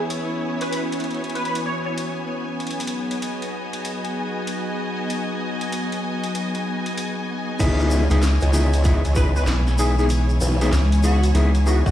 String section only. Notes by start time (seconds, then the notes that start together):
Already playing: B3 E4 C#5 G#5
2.89 F#4
3.06 D#5
7.78 E4
8.25 C#5